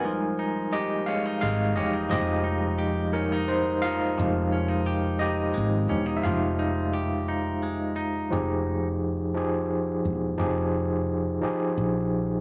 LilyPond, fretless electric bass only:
\new Staff \with { instrumentName = "Fretless electric bass" } { \clef bass \time 6/8 \key f \minor \tempo 4. = 58 f,,2 aes,,8 e,,8 | f,,2. | f,,2 aes,,8 e,,8 | f,,2. |
f,,2~ f,,8 e,,8 | f,,4. r8 bes,,4 | }